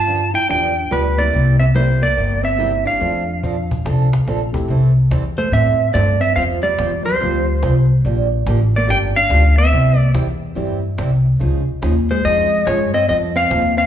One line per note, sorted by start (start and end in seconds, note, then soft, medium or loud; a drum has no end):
0.00 0.34 G2 medium
0.00 0.32 F4 medium
0.00 0.35 A5 medium
0.08 0.19 D3 medium
0.08 0.19 F3 medium
0.08 0.20 B3 medium
0.08 0.20 D4 medium
0.08 0.20 G4 medium
0.08 cajon slap soft
0.34 0.48 E4 medium
0.34 0.49 G5 medium
0.34 cajon slap soft
0.49 0.85 E2 medium
0.49 0.71 D3 medium
0.49 0.72 F3 medium
0.49 0.72 B3 medium
0.49 0.88 D4 medium
0.49 0.72 D4 medium
0.49 0.72 G4 medium
0.49 0.93 G5 medium
0.49 cajon slap soft
0.91 1.27 D2 medium
0.91 1.03 D3 medium
0.91 1.03 F3 medium
0.91 1.16 G3 medium
0.91 1.03 B3 medium
0.91 1.03 D4 medium
0.91 1.03 G4 medium
0.91 1.20 B4 medium
0.91 cajon slap soft
1.18 1.72 G3 medium
1.18 1.57 A#3 medium
1.18 1.72 A#3 medium
1.18 1.73 C4 medium
1.18 1.73 E4 medium
1.18 1.58 D5 medium
1.34 2.01 C2 medium
1.34 1.55 C3 soft
1.34 1.56 G3 medium
1.34 1.56 A#3 medium
1.34 1.56 E4 medium
1.34 1.56 G4 medium
1.34 cajon slap soft
1.60 1.65 C4 medium
1.60 1.65 E5 medium
1.75 1.87 C3 medium
1.75 2.00 G3 medium
1.75 1.87 G3 medium
1.75 2.00 G3 medium
1.75 2.00 A#3 medium
1.75 1.87 A#3 medium
1.75 2.00 C4 medium
1.75 1.87 E4 medium
1.75 2.00 E4 medium
1.75 1.87 G4 medium
1.75 2.01 C5 medium
1.75 cajon slap soft
2.02 2.41 A#3 medium
2.02 2.44 D5 medium
2.02 cajon slap soft
2.17 2.85 G1 medium
2.17 2.39 C3 medium
2.17 2.39 G3 medium
2.17 2.39 A#3 medium
2.17 2.39 E4 medium
2.17 2.39 G4 medium
2.17 cajon slap soft
2.43 2.83 C4 medium
2.43 2.87 E5 medium
2.58 2.70 C3 medium
2.58 3.01 G3 medium
2.58 2.71 G3 medium
2.58 3.01 A#3 medium
2.58 2.71 A#3 medium
2.58 2.98 C4 medium
2.58 3.01 E4 medium
2.58 2.71 E4 medium
2.58 2.71 G4 medium
2.58 cajon slap soft
2.85 4.50 D4 medium
2.85 4.50 F5 medium
2.85 cajon slap soft
2.99 3.68 F2 medium
2.99 3.22 F3 soft
2.99 3.25 A3 medium
2.99 3.25 C4 soft
2.99 3.23 C4 soft
2.99 3.25 D4 soft
2.99 3.23 D4 medium
2.99 3.25 F4 medium
2.99 3.23 A4 medium
2.99 cajon slap soft
3.43 3.55 F3 medium
3.43 3.55 C4 medium
3.43 3.55 D4 medium
3.43 3.55 A4 medium
3.43 cajon bass soft
3.71 cajon bass medium
3.85 4.20 C2 medium
3.85 4.07 F3 medium
3.85 4.07 C4 medium
3.85 4.08 D4 medium
3.85 4.08 A4 medium
3.85 cajon slap medium
4.13 cajon slap medium
4.26 4.62 A#1 medium
4.26 4.39 F3 medium
4.26 4.39 C4 medium
4.26 4.39 D4 medium
4.26 4.39 A4 medium
4.26 cajon slap medium
4.53 4.67 A3 medium
4.53 4.67 C4 medium
4.53 4.67 E4 medium
4.53 4.67 G4 medium
4.53 cajon bass medium
4.68 5.09 C2 medium
4.68 4.91 E3 medium
4.68 4.91 G3 medium
4.68 4.92 C4 medium
4.68 4.92 E4 medium
4.68 4.92 A4 medium
5.11 5.51 E2 medium
5.11 5.23 E3 medium
5.11 5.23 G3 medium
5.11 5.23 C4 medium
5.11 5.23 E4 medium
5.11 5.23 A4 medium
5.11 cajon slap medium
5.38 5.52 A3 medium
5.38 5.52 C5 medium
5.38 cajon slap soft
5.52 5.93 A2 medium
5.52 5.75 E3 medium
5.52 5.75 G3 medium
5.52 5.92 C4 medium
5.52 5.75 C4 medium
5.52 5.75 E4 medium
5.52 5.76 A4 medium
5.52 5.93 E5 medium
5.52 cajon slap soft
5.94 6.35 G2 medium
5.94 6.06 E3 medium
5.94 6.06 G3 medium
5.94 6.20 A3 medium
5.94 6.07 C4 medium
5.94 6.07 E4 medium
5.94 6.07 A4 medium
5.94 6.19 D5 medium
5.94 cajon slap medium
6.21 6.35 C4 medium
6.21 6.35 E5 medium
6.21 cajon slap soft
6.36 6.77 F2 medium
6.36 6.59 F3 soft
6.36 6.59 G3 medium
6.36 6.44 C4 medium
6.36 6.59 C4 medium
6.36 6.59 F4 medium
6.36 6.59 C5 medium
6.36 6.43 F5 loud
6.36 cajon slap soft
6.63 7.03 G3 medium
6.63 7.02 D5 medium
6.79 7.19 E2 medium
6.79 6.90 F3 medium
6.79 6.90 G3 medium
6.79 6.91 C4 medium
6.79 6.91 F4 medium
6.79 6.91 C5 medium
6.79 cajon slap medium
7.05 7.85 G3 medium
7.05 7.86 C5 medium
7.05 cajon slap soft
7.21 7.61 D2 medium
7.21 7.42 F3 medium
7.21 7.45 F3 medium
7.21 7.43 G3 medium
7.21 7.45 G3 medium
7.21 7.45 C4 medium
7.21 7.43 C4 medium
7.21 7.45 F4 medium
7.21 7.43 F4 medium
7.21 7.45 G4 medium
7.21 7.43 C5 medium
7.21 cajon slap soft
7.62 8.04 C2 medium
7.62 7.74 F3 medium
7.62 7.74 G3 medium
7.62 7.74 C4 medium
7.62 7.74 F4 medium
7.62 7.74 C5 medium
7.62 cajon slap medium
7.89 cajon slap soft
8.05 8.45 A#1 medium
8.05 8.27 D3 medium
8.05 8.27 F3 medium
8.05 8.27 A#3 medium
8.05 8.27 D4 medium
8.05 8.27 G4 medium
8.05 cajon slap soft
8.46 8.87 A1 loud
8.46 8.58 D3 medium
8.46 8.59 F3 medium
8.46 8.58 A#3 medium
8.46 8.59 D4 medium
8.46 8.59 G4 medium
8.46 cajon slap medium
8.74 8.90 D5 medium
8.74 cajon slap soft
8.78 8.90 A#3 medium
8.87 9.29 G1 medium
8.87 9.10 D3 medium
8.87 9.11 F3 medium
8.87 9.12 G3 medium
8.87 9.12 A#3 medium
8.87 9.10 A#3 medium
8.87 9.13 D4 medium
8.87 9.11 D4 medium
8.87 9.13 F4 medium
8.87 9.13 G4 medium
8.87 9.11 G4 medium
8.87 8.97 G5 loud
8.87 cajon slap soft
8.91 8.98 D4 medium
9.16 9.55 D4 medium
9.16 9.58 F5 loud
9.29 9.71 D2 loud
9.29 9.41 D3 medium
9.29 9.42 F3 medium
9.29 9.42 A#3 medium
9.29 9.42 D4 medium
9.29 9.42 G4 medium
9.29 cajon slap medium
9.57 9.98 C4 medium
9.57 9.98 E5 medium
9.57 cajon slap soft
9.72 10.13 C2 medium
9.72 9.94 C3 medium
9.72 9.94 G3 soft
9.72 9.94 C4 medium
9.72 9.94 E4 medium
9.72 9.94 G4 medium
9.72 cajon slap soft
9.98 10.11 A#3 medium
9.98 10.11 D5 medium
10.14 10.55 E2 medium
10.14 10.26 C3 medium
10.14 10.26 G3 medium
10.14 10.26 C4 medium
10.14 10.26 E4 medium
10.14 10.26 G4 medium
10.14 cajon slap medium
10.55 10.97 G2 medium
10.55 10.78 C3 medium
10.55 10.81 E3 medium
10.55 10.78 G3 medium
10.55 10.80 G3 medium
10.55 10.78 C4 medium
10.55 10.81 C4 medium
10.55 10.78 E4 medium
10.55 10.81 E4 medium
10.55 10.78 G4 medium
10.55 10.81 G4 medium
10.55 cajon slap soft
10.98 11.39 C2 medium
10.98 11.10 C3 medium
10.98 11.10 G3 medium
10.98 11.10 C4 medium
10.98 11.10 E4 medium
10.98 11.10 G4 medium
10.98 cajon slap medium
11.26 cajon slap soft
11.39 11.66 C#2 medium
11.39 11.62 C#3 medium
11.39 11.62 F3 medium
11.39 11.62 D#4 medium
11.39 11.62 G#4 medium
11.39 cajon slap soft
11.68 muted upright bass stroke soft
11.82 12.23 D#2 loud
11.82 11.94 C#3 medium
11.82 11.94 F3 medium
11.82 11.94 D#4 medium
11.82 11.94 G#4 medium
11.82 cajon slap medium
12.10 12.24 G#3 medium
12.10 12.24 C5 medium
12.10 cajon slap soft
12.24 12.66 F2 medium
12.24 12.46 C#3 soft
12.24 12.46 F3 medium
12.24 12.64 G#3 medium
12.24 12.47 D#4 medium
12.24 12.46 G#4 medium
12.24 12.68 D#5 medium
12.24 cajon slap soft
12.66 13.08 G2 medium
12.66 12.78 C#3 medium
12.66 12.78 F3 medium
12.66 12.92 G#3 medium
12.66 12.78 D#4 medium
12.66 12.78 G#4 medium
12.66 12.94 C#5 medium
12.66 cajon slap medium
12.94 13.08 C4 medium
12.94 13.08 D#5 medium
12.94 cajon slap soft
13.07 13.50 F2 medium
13.07 13.30 F3 medium
13.07 13.30 C4 medium
13.07 13.16 C4 medium
13.07 13.30 D#4 medium
13.07 13.31 A4 medium
13.07 13.16 D#5 medium
13.07 cajon slap soft
13.36 13.75 C4 medium
13.36 13.77 F5 loud
13.50 13.86 D#2 medium
13.50 13.62 F3 medium
13.50 13.62 C4 medium
13.50 13.62 D#4 medium
13.50 13.62 A4 medium
13.50 cajon slap medium
13.77 13.86 C4 medium
13.77 13.86 F5 loud